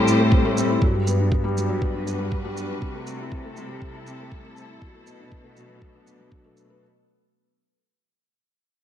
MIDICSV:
0, 0, Header, 1, 5, 480
1, 0, Start_track
1, 0, Tempo, 500000
1, 780, Time_signature, 4, 2, 24, 8
1, 8479, End_track
2, 0, Start_track
2, 0, Title_t, "String section"
2, 0, Program_c, 0, 48
2, 0, Note_on_c, 0, 45, 57
2, 0, Note_on_c, 0, 57, 58
2, 0, Note_on_c, 0, 67, 59
2, 0, Note_on_c, 0, 72, 65
2, 784, Note_off_c, 0, 57, 0
2, 787, Note_off_c, 0, 72, 0
2, 788, Note_off_c, 0, 67, 0
2, 789, Note_off_c, 0, 45, 0
2, 1420, Note_on_c, 0, 66, 61
2, 1443, Note_on_c, 0, 62, 67
2, 1647, Note_on_c, 0, 71, 71
2, 2704, Note_on_c, 0, 48, 64
2, 3045, Note_on_c, 0, 69, 70
2, 3089, Note_on_c, 0, 60, 70
2, 3468, Note_off_c, 0, 62, 0
2, 3470, Note_off_c, 0, 71, 0
2, 3472, Note_off_c, 0, 66, 0
2, 3581, Note_on_c, 0, 64, 76
2, 4623, Note_off_c, 0, 48, 0
2, 4625, Note_off_c, 0, 60, 0
2, 4634, Note_on_c, 0, 47, 71
2, 4812, Note_on_c, 0, 59, 62
2, 5397, Note_off_c, 0, 64, 0
2, 5485, Note_on_c, 0, 62, 64
2, 6539, Note_off_c, 0, 69, 0
2, 6541, Note_off_c, 0, 62, 0
2, 6545, Note_off_c, 0, 59, 0
2, 6548, Note_off_c, 0, 47, 0
2, 8479, End_track
3, 0, Start_track
3, 0, Title_t, "Felt piano"
3, 0, Program_c, 1, 0
3, 0, Control_c, 1, 64, 127
3, 0, Note_on_c, 1, 55, 90
3, 0, Note_on_c, 1, 57, 87
3, 0, Note_on_c, 1, 60, 68
3, 0, Note_on_c, 1, 64, 61
3, 68, Note_off_c, 1, 60, 0
3, 68, Note_on_c, 1, 60, 63
3, 133, Note_off_c, 1, 60, 0
3, 187, Note_off_c, 1, 57, 0
3, 187, Note_on_c, 1, 57, 92
3, 298, Note_off_c, 1, 57, 0
3, 312, Note_off_c, 1, 55, 0
3, 312, Note_on_c, 1, 55, 71
3, 375, Note_off_c, 1, 55, 0
3, 430, Note_on_c, 1, 57, 96
3, 539, Note_off_c, 1, 57, 0
3, 547, Note_on_c, 1, 60, 63
3, 658, Note_off_c, 1, 60, 0
3, 668, Note_off_c, 1, 64, 0
3, 668, Note_on_c, 1, 64, 66
3, 778, Note_off_c, 1, 64, 0
3, 786, Note_on_c, 1, 54, 86
3, 794, Control_c, 1, 64, 0
3, 898, Note_off_c, 1, 54, 0
3, 904, Note_on_c, 1, 55, 64
3, 940, Control_c, 1, 64, 127
3, 1017, Note_off_c, 1, 55, 0
3, 1029, Note_on_c, 1, 59, 67
3, 1139, Note_off_c, 1, 59, 0
3, 1147, Note_on_c, 1, 62, 62
3, 1258, Note_off_c, 1, 62, 0
3, 1267, Note_on_c, 1, 59, 68
3, 1378, Note_off_c, 1, 59, 0
3, 1382, Note_on_c, 1, 55, 86
3, 1495, Note_off_c, 1, 55, 0
3, 1509, Note_on_c, 1, 54, 66
3, 1609, Note_off_c, 1, 54, 0
3, 1623, Note_on_c, 1, 54, 87
3, 1736, Note_off_c, 1, 54, 0
3, 1744, Note_on_c, 1, 59, 70
3, 1811, Note_off_c, 1, 59, 0
3, 1863, Note_on_c, 1, 62, 60
3, 1976, Note_off_c, 1, 62, 0
3, 1983, Note_on_c, 1, 59, 64
3, 2050, Note_off_c, 1, 59, 0
3, 2103, Note_on_c, 1, 55, 86
3, 2216, Note_off_c, 1, 55, 0
3, 2350, Note_on_c, 1, 55, 92
3, 2459, Note_off_c, 1, 55, 0
3, 2472, Note_on_c, 1, 59, 70
3, 2580, Note_off_c, 1, 59, 0
3, 2592, Note_on_c, 1, 62, 63
3, 2701, Note_off_c, 1, 62, 0
3, 2705, Note_on_c, 1, 55, 84
3, 2715, Control_c, 1, 64, 0
3, 2817, Note_off_c, 1, 55, 0
3, 2828, Note_on_c, 1, 57, 66
3, 2898, Control_c, 1, 64, 127
3, 2939, Note_off_c, 1, 57, 0
3, 2947, Note_on_c, 1, 60, 69
3, 3058, Note_off_c, 1, 60, 0
3, 3073, Note_on_c, 1, 64, 62
3, 3181, Note_off_c, 1, 64, 0
3, 3187, Note_on_c, 1, 60, 66
3, 3298, Note_off_c, 1, 60, 0
3, 3302, Note_on_c, 1, 57, 84
3, 3415, Note_off_c, 1, 57, 0
3, 3427, Note_on_c, 1, 55, 62
3, 3528, Note_off_c, 1, 55, 0
3, 3542, Note_on_c, 1, 55, 83
3, 3655, Note_off_c, 1, 55, 0
3, 3667, Note_on_c, 1, 60, 74
3, 3732, Note_off_c, 1, 60, 0
3, 3787, Note_on_c, 1, 64, 62
3, 3898, Note_off_c, 1, 64, 0
3, 3907, Note_on_c, 1, 60, 63
3, 3972, Note_off_c, 1, 60, 0
3, 4035, Note_on_c, 1, 57, 82
3, 4142, Note_off_c, 1, 57, 0
3, 4145, Note_on_c, 1, 55, 74
3, 4211, Note_off_c, 1, 55, 0
3, 4272, Note_on_c, 1, 57, 91
3, 4380, Note_off_c, 1, 57, 0
3, 4397, Note_on_c, 1, 60, 64
3, 4503, Note_off_c, 1, 60, 0
3, 4518, Note_on_c, 1, 64, 60
3, 4623, Note_off_c, 1, 64, 0
3, 4626, Note_on_c, 1, 54, 74
3, 4631, Control_c, 1, 64, 0
3, 4737, Note_off_c, 1, 54, 0
3, 4747, Note_on_c, 1, 57, 60
3, 4805, Control_c, 1, 64, 127
3, 4858, Note_off_c, 1, 57, 0
3, 4863, Note_on_c, 1, 59, 66
3, 4976, Note_off_c, 1, 59, 0
3, 4990, Note_on_c, 1, 62, 63
3, 5099, Note_off_c, 1, 62, 0
3, 5102, Note_on_c, 1, 59, 66
3, 5215, Note_off_c, 1, 59, 0
3, 5218, Note_on_c, 1, 57, 85
3, 5333, Note_off_c, 1, 57, 0
3, 5337, Note_on_c, 1, 54, 61
3, 5440, Note_off_c, 1, 54, 0
3, 5455, Note_on_c, 1, 54, 80
3, 5572, Note_off_c, 1, 54, 0
3, 5578, Note_on_c, 1, 59, 66
3, 5648, Note_off_c, 1, 59, 0
3, 5696, Note_on_c, 1, 62, 57
3, 5806, Note_off_c, 1, 62, 0
3, 5821, Note_on_c, 1, 62, 63
3, 5935, Note_off_c, 1, 62, 0
3, 5945, Note_on_c, 1, 54, 78
3, 6044, Note_off_c, 1, 54, 0
3, 6058, Note_on_c, 1, 54, 86
3, 6128, Note_off_c, 1, 54, 0
3, 6185, Note_on_c, 1, 57, 84
3, 6297, Note_off_c, 1, 57, 0
3, 6311, Note_on_c, 1, 59, 56
3, 6374, Note_off_c, 1, 59, 0
3, 6431, Note_on_c, 1, 59, 81
3, 6540, Note_off_c, 1, 59, 0
3, 6552, Control_c, 1, 64, 0
3, 8479, End_track
4, 0, Start_track
4, 0, Title_t, "Cello section"
4, 0, Program_c, 2, 48
4, 0, Note_on_c, 2, 45, 84
4, 761, Note_off_c, 2, 45, 0
4, 786, Note_on_c, 2, 43, 84
4, 2679, Note_off_c, 2, 43, 0
4, 2705, Note_on_c, 2, 48, 89
4, 4599, Note_off_c, 2, 48, 0
4, 4623, Note_on_c, 2, 47, 85
4, 6518, Note_off_c, 2, 47, 0
4, 8479, End_track
5, 0, Start_track
5, 0, Title_t, "Drums"
5, 73, Note_on_c, 9, 82, 54
5, 169, Note_off_c, 9, 82, 0
5, 305, Note_on_c, 9, 36, 81
5, 401, Note_off_c, 9, 36, 0
5, 552, Note_on_c, 9, 82, 55
5, 648, Note_off_c, 9, 82, 0
5, 784, Note_on_c, 9, 36, 85
5, 880, Note_off_c, 9, 36, 0
5, 1030, Note_on_c, 9, 82, 55
5, 1126, Note_off_c, 9, 82, 0
5, 1264, Note_on_c, 9, 36, 88
5, 1360, Note_off_c, 9, 36, 0
5, 1513, Note_on_c, 9, 82, 53
5, 1609, Note_off_c, 9, 82, 0
5, 1745, Note_on_c, 9, 36, 86
5, 1841, Note_off_c, 9, 36, 0
5, 1991, Note_on_c, 9, 82, 51
5, 2087, Note_off_c, 9, 82, 0
5, 2225, Note_on_c, 9, 36, 82
5, 2321, Note_off_c, 9, 36, 0
5, 2469, Note_on_c, 9, 82, 51
5, 2565, Note_off_c, 9, 82, 0
5, 2705, Note_on_c, 9, 36, 85
5, 2801, Note_off_c, 9, 36, 0
5, 2946, Note_on_c, 9, 82, 56
5, 3042, Note_off_c, 9, 82, 0
5, 3184, Note_on_c, 9, 36, 83
5, 3280, Note_off_c, 9, 36, 0
5, 3423, Note_on_c, 9, 82, 47
5, 3519, Note_off_c, 9, 82, 0
5, 3663, Note_on_c, 9, 36, 78
5, 3759, Note_off_c, 9, 36, 0
5, 3905, Note_on_c, 9, 82, 53
5, 4001, Note_off_c, 9, 82, 0
5, 4144, Note_on_c, 9, 36, 81
5, 4240, Note_off_c, 9, 36, 0
5, 4385, Note_on_c, 9, 82, 45
5, 4481, Note_off_c, 9, 82, 0
5, 4624, Note_on_c, 9, 36, 86
5, 4720, Note_off_c, 9, 36, 0
5, 4866, Note_on_c, 9, 82, 56
5, 4962, Note_off_c, 9, 82, 0
5, 5104, Note_on_c, 9, 36, 84
5, 5200, Note_off_c, 9, 36, 0
5, 5344, Note_on_c, 9, 82, 46
5, 5440, Note_off_c, 9, 82, 0
5, 5584, Note_on_c, 9, 36, 82
5, 5680, Note_off_c, 9, 36, 0
5, 5828, Note_on_c, 9, 82, 51
5, 5924, Note_off_c, 9, 82, 0
5, 6065, Note_on_c, 9, 36, 79
5, 6161, Note_off_c, 9, 36, 0
5, 6307, Note_on_c, 9, 82, 46
5, 6403, Note_off_c, 9, 82, 0
5, 8479, End_track
0, 0, End_of_file